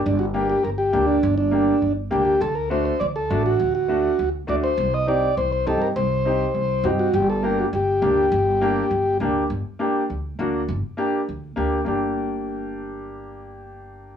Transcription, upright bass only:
\new Staff \with { instrumentName = "Upright bass" } { \clef bass \time 4/4 \key g \minor \tempo 4 = 203 g,,2 g,,4 d,4 | g,,2 g,,4 d,4 | d,2 d,4 a,,4 | d,2 d,4 d,4 |
c,2 c,4 g,4 | c,2 c,4 g,4 | g,,2 g,,4 d,4 | g,,2 g,,4 d,4 |
g,,8 r4. d,4 d,4 | g,,8 r4. d,4 d,4 | g,,1~ | g,,1 | }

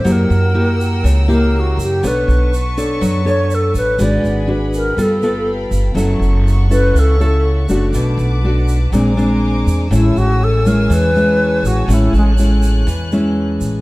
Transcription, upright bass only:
\new Staff \with { instrumentName = "Upright bass" } { \clef bass \time 4/4 \key a \major \tempo 4 = 122 fis,8 fis,4. cis,4. fis,8 | b,,8 b,,4. fis,4. a,,8 | gis,,8 gis,,4. g,,4. g,,8 | fis,,8 fis,,4. cis,4. fis,,8 |
b,,8 b,,4. bes,,4. e,8 | a,,8 a,,4. e,4. a,,8 | a,,8 a,,4. e,4. a,,8 | }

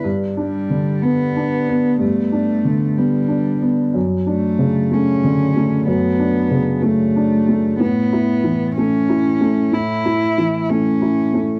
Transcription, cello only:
\new Staff \with { instrumentName = "Cello" } { \time 6/8 \key g \lydian \tempo 4. = 62 r8 g4 b4. | a4. g4. | r8 a4 cis'4. | b4. a4. |
b4. cis'4. | e'4. cis'4. | }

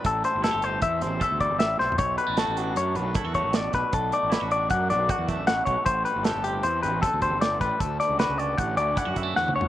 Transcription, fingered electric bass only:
\new Staff \with { instrumentName = "Fingered electric bass" } { \clef bass \time 5/4 \key a \mixolydian \tempo 4 = 155 a,,8 r16 g,,8 g,,8. e,8 a,,8 r16 d,8 g,,16 a,,8 b,,8 | b,,8 r16 a,,8 a,,8. fis,8 b,,8 r16 e,8 a,,8. b,,16 r16 | b,,8 r16 a,,8 a,,8. fis,8 b,,8 r16 e,8 a,,8. b,,16 r16 | a,,8 r16 g,,8 g,,8. e,8 a,,8 r16 d,8 g,,8. a,,16 r16 |
d,8 r16 cis,8 cis,8. a,,8 d,8 r16 fis,16 fis,8 e,8 d,8 | }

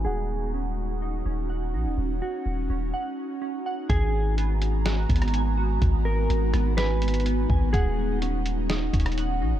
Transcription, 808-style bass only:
\new Staff \with { instrumentName = "808-style bass" } { \clef bass \time 4/4 \key gis \minor \tempo 4 = 125 dis,,2~ dis,,8 dis,,4 ais,,16 dis,,16 | dis,,8 r8 dis,,8 dis,,8 r2 | gis,,2~ gis,,8 gis,,4. | gis,,4 gis,,8 gis,,2 gis,,8 |
dis,,2~ dis,,8 dis,,4 ais,,16 dis,,16 | }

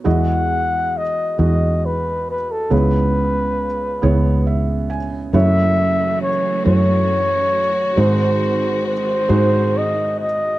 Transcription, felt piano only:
<<
  \new Staff \with { instrumentName = "Felt piano" } { \time 6/8 \key e \major \tempo 4. = 46 << { r2. | r2 e''8 gis''8 | r2. | r2. | } \\ { <gis e' fis' dis''>4 r8 <gis e' fis' dis''>4 r8 | <b e' gis' cis''>4 r8 <b e' gis' cis''>4 r8 | <a e' fis' cis''>4 r8 <a e' fis' cis''>4 r8 | <gis dis' fis' bis'>4 r8 <gis dis' fis' bis'>4 r8 | } >> }
  \new Staff \with { instrumentName = "Felt piano" } { \clef bass \time 6/8 \key e \major <e, e>2. | <cis, cis>2. | <fis,, fis,>2. | <gis,, gis,>2. | }
>>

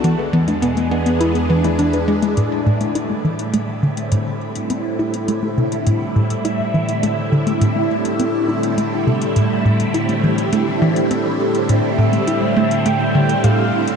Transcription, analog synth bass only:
\new Staff \with { instrumentName = "Analog synth bass" } { \clef bass \time 4/4 \key e \dorian \tempo 4 = 103 e8 e8 b8 b8 e'8 e8 d'8 gis8 | \key a \minor a,8 a,8 e'8 e8 a8 d8 a,8 r8 | c'8 e'8 a8 c8 a,8 a,8 e'8 e8 | a8 d8 a,8 r8 c'8 e'8 a8 c8 |
a,8 a,8 e'8 e8 a8 e8 c'8 r8 | a,8 a,8 e'8 a8 a8 d8 a,8 r8 | }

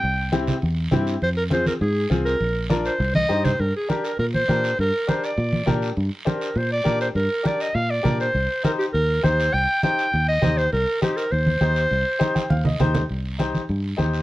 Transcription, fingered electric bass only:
\new Staff \with { instrumentName = "Fingered electric bass" } { \clef bass \time 4/4 \key c \minor \tempo 4 = 202 c,2 e,4 g,4 | f,2 aes,4 c,4 | bes,,2 c,4 g,4 | g,8 r4. bes,4 bes,4 |
g,8 r4. bes,4 bes,4 | g,8 r4. bes,4 bes,4 | g,8 r4. bes,4 bes,4 | c,8 r4. ees,4 ees,4 |
c,8 r4. ees,4 ees,4 | c,8 r4. ees,4 ees,4 | c,8 r4. ees,4 ees,4 | c,2 g,4 ees,4 | }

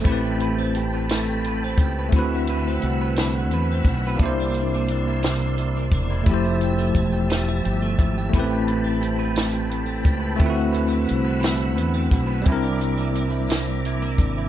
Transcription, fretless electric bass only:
\new Staff \with { instrumentName = "Fretless electric bass" } { \clef bass \time 6/8 \key a \minor \tempo 4. = 58 a,,2~ a,,8 cis,8 | d,4 c,4 e,8 b,,8 | c,2~ c,8 e,,8 | f,,4 e,,4 g,,8 gis,,8 |
a,,2~ a,,8 cis,8 | d,4 c,4 e,8 b,,8 | c,2~ c,8 gis,,8 | }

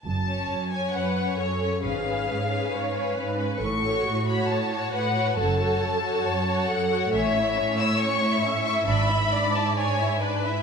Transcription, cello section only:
\new Staff \with { instrumentName = "Cello section" } { \clef bass \time 4/4 \key fis \minor \tempo 4 = 136 fis,4 fis,4 fis,4 fis,4 | gis,4 gis,4 gis,4 gis,4 | a,4 a,4 a,4 a,4 | fis,4 fis,4 fis,4 fis,4 |
\key a \major a,1 | gis,1 | }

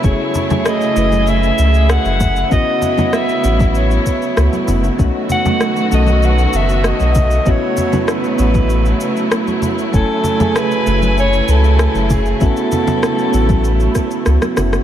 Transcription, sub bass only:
\new Staff \with { instrumentName = "Sub bass" } { \clef bass \time 4/4 \key a \lydian \tempo 4 = 97 fis,,16 r4 r16 fis,,4 cis,8 r16 fis,,8. | a,,16 r4 r16 a,,4 r8 cis,16 r16 fis,,16 r16 | b,,16 r4 r16 b,,4 fis,,8 r16 b,,8. | a,,16 r4 r16 a,,4 r4. |
fis,,16 r4 r16 fis,,4 cis,8 r16 fis,,8. | a,,16 r4 r16 a,,4 r8 cis,16 r16 fis,,16 r16 | }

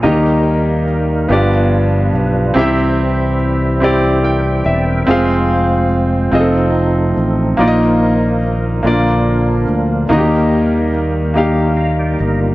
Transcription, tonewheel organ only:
\new Staff \with { instrumentName = "Tonewheel organ" } { \time 6/8 \key ees \major \tempo 4. = 48 << { r2. | r2 <e' bes' g''>16 <g' c''>16 <g' d''>16 <bes' e''>16~ | <bes' e''>16 r2 r8. | r2. |
r2 <f'' bes''>16 <d'' g''>16 <bes' ees''>16 <f' bes'>16 | } \\ { <g bes ees' aes' bes'>4. <g d' f' b'>4. | <c' e'>2. | <aes c' f' c''>4. <f c' ees' a'>4. | <f bes ees' bes'>4. <f bes d' bes'>4. |
<g bes ees' bes'>2. | } >> }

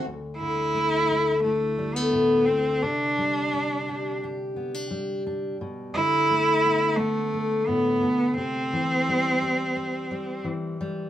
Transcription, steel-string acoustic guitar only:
\new Staff \with { instrumentName = "Steel-string acoustic guitar" } { \clef bass \time 4/4 \key c \lydian \tempo 4 = 86 << { r4 a8 a8 e'8 g16 a4~ a16 | r4 d'8 g'8 g'8 b16 d'8. d'8 | r4 a8 b8 b8 a4. | r4 g8 g'8 c'8 g4 g8 | } \\ { d,8 d2~ d8 a,8 r8 | c8 g2~ g8 g4 | b,8 d2~ d8 a,8 b,8 | c8 e2~ e8 e4 | } >> }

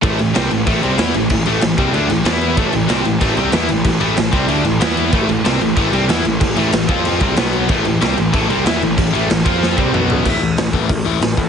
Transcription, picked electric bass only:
\new Staff \with { instrumentName = "Picked electric bass" } { \clef bass \time 4/4 \key a \minor \tempo 4 = 188 a,,8 a,,8 c,8 a,,8 a,,8 c,8 e,8 a,,8 | a,,8 a,,8 a,,8 c,8 d,8 a,,8 e,4 | a,,8 a,,8 c,8 a,,8 a,,8 c,8 e,8 a,,8 | a,,8 a,,8 a,,8 c,8 d,8 a,,8 e,4 |
a,,8 a,,8 c,8 a,,8 a,,8 c,8 e,8 a,,8 | a,,8 a,,8 a,,8 f,4 c,8 b,,4 | a,,8 a,,8 c,8 a,,8 a,,8 c,8 e,8 a,,8 | a,,8 a,,8 a,,8 f,4 c,8 b,,4 |
a,,8 a,,8 a,,8 a,,8 a,,8 a,,8 a,,8 a,8 | }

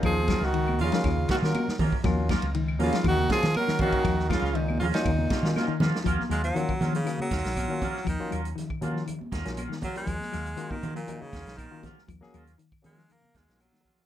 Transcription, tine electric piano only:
\new Staff \with { instrumentName = "Tine electric piano" } { \time 4/4 \key ees \minor \tempo 4 = 119 <ges bes des' ees'>16 r4 r16 <des' f'>16 <ges bes des' f'>16 r8. <ges bes des' f'>8 r8. | <ges bes des' f'>8 r4 <ges bes des' f'>16 r8. <ges bes des' f'>16 r8. <ges bes des' f''>8~ | <ges bes des' f''>16 r4 r16 <des' f'>16 <ges bes des' f'>16 r8. <ges bes des' f'>8 r8. | r4 <ges bes des' f'>16 r8. <ges bes des' aes'>8 r8. <ges bes des' f'>16 r8 |
r16 <ges bes des' f'>8 r8. <ges bes des' f'>8 r8. <ges bes des' f'>16 r8. <ges bes des' f'>16~ | <ges bes des' f'>16 r8. <ges bes des' f'>16 r8. <ges bes des' ees'>8 r8. <ges bes des' f'>16 r8 | r16 <ges bes des' aes'>8 r8. <ges bes des' aes'>8 r8. <ges bes des' f'>16 r8. <ges bes des' f'>16 | }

